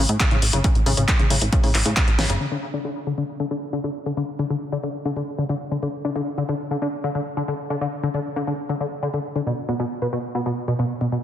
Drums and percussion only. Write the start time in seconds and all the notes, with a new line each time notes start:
0.09 closed hi-hat
0.20 kick, clap, closed hi-hat
0.31 closed hi-hat
0.42 open hi-hat
0.53 closed hi-hat
0.64 kick, closed hi-hat
0.75 closed hi-hat
0.86 open hi-hat
0.97 closed hi-hat
1.08 kick, clap, closed hi-hat
1.19 closed hi-hat
1.30 open hi-hat
1.42 closed hi-hat
1.53 kick, closed hi-hat
1.64 open hi-hat
1.75 clap, open hi-hat
1.86 closed hi-hat
1.97 kick, clap, closed hi-hat
2.08 closed hi-hat
2.19 snare, open hi-hat
2.30 closed hi-hat